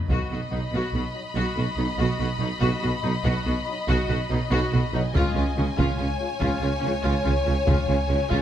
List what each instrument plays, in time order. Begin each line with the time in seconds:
0.09 tuba B1, double bass section B1, cello section B2, viola section F#4, violin section D#5 B5, taiko
0.30 tuba B1, double bass section B1, cello section B2, viola section F#4
0.50 tuba B1, double bass section B1, cello section B2, french horn section F#3 D#4, viola section D#4
0.72 tuba B1, double bass section B1, cello section B2, viola section F#4
0.93 tuba B1, double bass section B1, cello section B2, viola section F#4
1.14 french horn section F#3 D#4
1.34 tuba B1, double bass section B1, cello section B2, viola section F#4
1.55 tuba B1, double bass section B1, cello section B2, viola section F#4
1.77 double bass section B1, tuba B1, cello section B2, french horn section F#3 D#4, viola section D#4
1.97 double bass section B1, tuba B1, cello section B2, viola section F#4
2.19 double bass section B1, tuba B1, cello section B2, viola section F#4
2.39 double bass section B1, tuba B1, cello section B2, french horn section F#3 D#4, viola section D#4
2.60 double bass section B1, tuba B1, cello section B2, viola section F#4
2.82 double bass section B1, tuba B1, cello section B2, viola section F#4
3.03 double bass section B1, tuba B1, cello section B2, french horn section F#3 D#4, viola section D#4
3.24 tuba B1, double bass section B1, cello section B2, viola section F#4
3.45 tuba B1, double bass section B1, cello section B2, viola section F#4
3.68 french horn section F#3 D#4
3.87 tuba B1, double bass section B1, cello section B2, viola section F#4
4.08 tuba B1, double bass section B1, cello section B2, viola section F#4
4.29 tuba B1, double bass section B1, cello section B2, french horn section F#3 D#4, viola section D#4
4.51 tuba B1, double bass section B1, cello section B2, viola section F#4
4.72 tuba B1, double bass section B1, cello section B2, viola section F#4
4.93 tuba B1, double bass section B1, cello section B2, french horn section F#3 D#4, viola section D#4
5.14 tuba C#2, double bass section C#2, cello section C#3, viola section F4, violin section G#5, taiko
5.35 tuba C#2, double bass section C#2, cello section C#3, viola section F4
5.57 tuba C#2, double bass section C#2, cello section C#3, french horn section G#3 F4, viola section C#4
5.77 tuba C#2, double bass section C#2, cello section C#3, viola section F4, violin section C#5, taiko
5.99 tuba C#2, double bass section C#2, cello section C#3, viola section F4
6.21 french horn section G#3 F4
6.40 tuba C#2, double bass section C#2, cello section C#3, viola section F4, taiko
6.60 tuba C#2, double bass section C#2, cello section C#3, viola section F4
6.81 tuba C#2, double bass section C#2, cello section C#3, french horn section G#3 F4, viola section C#4
7.03 tuba C#2, double bass section C#2, cello section C#3, viola section F4
7.24 tuba C#2, double bass section C#2, cello section C#3, viola section F4
7.45 tuba C#2, double bass section C#2, cello section C#3, french horn section G#3 F4, viola section C#4
7.66 tuba C#2, double bass section C#2, cello section C#3, viola section F4, taiko, reverse cymbal
7.88 tuba C#2, double bass section C#2, cello section C#3, viola section F4
8.08 tuba C#2, double bass section C#2, cello section C#3, french horn section G#3 F4, viola section C#4
8.30 tuba C#2, double bass section C#2, cello section C#3, viola section F4, taiko